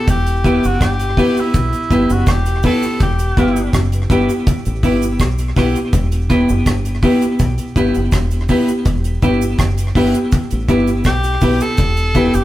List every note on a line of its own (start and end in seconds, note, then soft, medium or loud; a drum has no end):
0.08 0.60 E1 loud
0.08 0.67 G4 loud
0.08 kick loud
0.08 closed hi-hat loud
0.08 cabasa medium
0.26 closed hi-hat medium
0.26 cabasa medium
0.44 0.64 B3 medium
0.44 0.64 E4 loud
0.44 0.65 E4 medium
0.44 0.65 G4 medium
0.44 0.65 G4 loud
0.44 0.65 B4 loud
0.44 kick medium
0.44 closed hi-hat medium
0.44 cabasa soft
0.63 0.81 F#1 medium
0.63 0.85 F#4 medium
0.63 closed hi-hat soft
0.63 cabasa medium
0.81 1.15 G1 loud
0.81 1.42 G4 loud
0.81 kick medium
0.81 cross-stick loud
0.81 closed hi-hat medium
0.81 cabasa medium
1.00 closed hi-hat medium
1.00 cabasa medium
1.17 1.38 B3 medium
1.17 1.37 E4 loud
1.17 1.38 E4 medium
1.17 1.38 G4 medium
1.17 1.38 G4 loud
1.17 1.38 B4 loud
1.17 kick medium
1.17 open hi-hat medium
1.17 cabasa soft
1.37 2.14 E4 loud
1.37 cabasa medium
1.54 1.72 B1 loud
1.54 kick loud
1.54 closed hi-hat loud
1.54 cabasa medium
1.73 closed hi-hat medium
1.73 cabasa medium
1.90 2.09 G1 medium
1.90 2.11 B3 medium
1.90 2.10 E4 medium
1.90 2.11 E4 medium
1.90 2.11 G4 medium
1.90 2.11 G4 loud
1.90 2.11 B4 loud
1.90 kick medium
1.90 closed hi-hat medium
1.90 cabasa medium
2.09 2.26 F#1 medium
2.09 2.32 F#4 medium
2.09 closed hi-hat soft
2.09 cabasa medium
2.26 2.62 E1 medium
2.26 2.65 G4 loud
2.26 kick loud
2.26 cross-stick loud
2.26 closed hi-hat medium
2.26 cabasa medium
2.46 closed hi-hat soft
2.46 cabasa medium
2.63 2.84 B3 medium
2.63 2.84 E4 medium
2.63 2.84 G4 medium
2.63 2.99 A4 loud
2.63 2.84 B4 loud
2.63 kick medium
2.63 open hi-hat medium
2.63 cabasa medium
2.83 cabasa medium
3.00 3.35 E1 loud
3.00 3.71 G4 medium
3.00 kick loud
3.00 closed hi-hat medium
3.00 cabasa medium
3.19 closed hi-hat medium
3.19 cabasa medium
3.36 3.71 G1 medium
3.36 3.57 B3 medium
3.36 3.57 E4 loud
3.36 3.57 E4 medium
3.36 3.57 G4 medium
3.36 3.58 G4 loud
3.36 3.57 B4 loud
3.36 kick loud
3.36 closed hi-hat medium
3.36 cabasa soft
3.56 closed hi-hat soft
3.56 cabasa medium
3.73 4.08 F#1 medium
3.73 kick medium
3.73 cross-stick loud
3.73 closed hi-hat medium
3.73 cabasa medium
3.92 4.00 G4 soft
3.92 3.99 B4 soft
3.92 closed hi-hat medium
3.92 cabasa medium
4.09 4.28 G1 loud
4.09 4.30 B3 medium
4.09 4.30 E4 loud
4.09 4.30 E4 medium
4.09 4.30 G4 medium
4.09 4.31 G4 loud
4.09 4.30 B4 loud
4.09 kick medium
4.09 closed hi-hat medium
4.09 cabasa soft
4.29 closed hi-hat soft
4.29 cabasa medium
4.47 kick loud
4.47 closed hi-hat loud
4.47 cabasa medium
4.65 4.82 A1 medium
4.65 closed hi-hat medium
4.65 cabasa medium
4.83 5.18 G1 medium
4.83 5.03 B3 medium
4.83 5.03 E4 medium
4.83 5.03 G4 medium
4.83 5.04 G4 medium
4.83 5.04 B4 loud
4.83 kick medium
4.83 open hi-hat medium
4.83 cabasa medium
5.02 closed hi-hat soft
5.02 cabasa medium
5.19 5.54 B1 medium
5.19 kick loud
5.19 cross-stick medium
5.19 closed hi-hat medium
5.19 cabasa medium
5.38 muted clean electric guitar stroke soft
5.38 closed hi-hat soft
5.38 cabasa medium
5.56 5.74 B1 loud
5.56 5.76 B3 medium
5.56 5.76 E4 medium
5.56 5.77 E4 medium
5.56 5.76 G4 medium
5.56 5.77 G4 medium
5.56 5.77 B4 loud
5.56 kick medium
5.56 cross-stick medium
5.56 open hi-hat medium
5.56 cabasa medium
5.75 closed hi-hat soft
5.75 cabasa medium
5.93 6.45 E1 loud
5.93 kick loud
5.93 closed hi-hat medium
5.93 cabasa medium
6.12 closed hi-hat medium
6.12 cabasa soft
6.29 6.49 B3 loud
6.29 6.49 E4 medium
6.29 6.50 E4 loud
6.29 6.50 G4 medium
6.29 6.50 G4 loud
6.29 6.50 B4 loud
6.29 kick medium
6.29 closed hi-hat medium
6.29 cabasa soft
6.49 6.66 F#1 medium
6.49 cabasa medium
6.66 7.01 G1 loud
6.66 kick medium
6.66 cross-stick loud
6.66 closed hi-hat medium
6.66 cabasa medium
6.85 closed hi-hat medium
6.85 cabasa medium
7.02 7.23 B3 medium
7.02 7.23 E4 loud
7.02 7.23 E4 medium
7.02 7.23 G4 medium
7.02 7.23 B4 loud
7.02 kick medium
7.02 open hi-hat medium
7.02 cabasa soft
7.22 closed hi-hat soft
7.22 cabasa medium
7.39 7.57 B1 loud
7.39 kick loud
7.39 closed hi-hat loud
7.39 cabasa medium
7.58 closed hi-hat medium
7.58 cabasa medium
7.76 7.94 G1 medium
7.76 7.96 B3 medium
7.76 7.96 E4 medium
7.76 7.96 G4 medium
7.76 7.97 G4 loud
7.76 7.96 B4 loud
7.76 kick medium
7.76 closed hi-hat medium
7.76 cabasa medium
7.95 8.12 F#1 medium
7.95 closed hi-hat soft
7.95 cabasa medium
8.12 8.47 E1 medium
8.12 kick loud
8.12 cross-stick loud
8.12 closed hi-hat medium
8.12 cabasa medium
8.31 closed hi-hat soft
8.31 cabasa medium
8.48 8.69 B3 medium
8.48 8.69 E4 medium
8.48 8.69 G4 medium
8.48 8.70 G4 loud
8.48 8.70 B4 loud
8.48 kick medium
8.48 open hi-hat medium
8.48 cabasa medium
8.68 closed hi-hat soft
8.68 cabasa medium
8.85 9.20 E1 medium
8.85 kick loud
8.85 closed hi-hat medium
8.85 cabasa medium
9.04 closed hi-hat medium
9.04 cabasa medium
9.22 9.57 G1 medium
9.22 9.42 B3 medium
9.22 9.42 E4 loud
9.22 9.43 E4 medium
9.22 9.43 G4 medium
9.22 9.43 G4 loud
9.22 9.43 B4 loud
9.22 kick loud
9.22 closed hi-hat medium
9.22 cabasa soft
9.42 cabasa medium
9.58 9.93 F#1 medium
9.58 kick medium
9.58 cross-stick loud
9.58 closed hi-hat medium
9.58 cabasa medium
9.78 9.85 G4 soft
9.78 9.85 B4 soft
9.78 closed hi-hat medium
9.78 cabasa medium
9.95 10.13 G1 medium
9.95 10.15 B3 loud
9.95 10.15 E4 loud
9.95 10.16 E4 loud
9.95 10.16 G4 medium
9.95 10.16 G4 loud
9.95 10.16 B4 loud
9.95 kick medium
9.95 open hi-hat medium
9.95 cabasa soft
10.14 closed hi-hat soft
10.14 cabasa medium
10.32 kick loud
10.32 closed hi-hat loud
10.32 cabasa medium
10.51 10.68 A1 medium
10.51 closed hi-hat medium
10.51 cabasa medium
10.68 11.03 G1 medium
10.68 10.88 B3 medium
10.68 10.88 E4 loud
10.68 10.89 E4 medium
10.68 10.89 G4 medium
10.68 10.89 G4 loud
10.68 10.89 B4 loud
10.68 kick medium
10.68 closed hi-hat medium
10.68 cabasa medium
10.87 closed hi-hat soft
10.87 cabasa medium
11.04 11.39 B1 loud
11.04 11.63 G4 loud
11.04 kick loud
11.04 cross-stick loud
11.04 closed hi-hat medium
11.04 cabasa medium
11.23 muted clean electric guitar stroke soft
11.23 closed hi-hat soft
11.23 cabasa medium
11.41 11.60 B1 loud
11.41 11.61 B3 medium
11.41 11.62 E4 loud
11.41 11.62 E4 medium
11.41 11.62 G4 medium
11.41 11.62 B4 loud
11.41 kick medium
11.41 open hi-hat medium
11.41 cabasa medium
11.60 12.36 A4 loud
11.60 closed hi-hat soft
11.60 cabasa medium
11.77 12.30 E1 loud
11.77 kick loud
11.77 closed hi-hat medium
11.77 cabasa medium
11.97 closed hi-hat medium
11.97 cabasa medium
12.15 12.35 B3 medium
12.15 12.35 E4 loud
12.15 12.35 E4 medium
12.15 12.35 G4 medium
12.15 12.36 G4 medium
12.15 12.35 B4 loud
12.15 kick loud
12.15 closed hi-hat medium
12.15 cabasa medium
12.34 12.44 F#1 medium
12.34 12.44 G4 loud
12.34 closed hi-hat soft
12.34 cabasa medium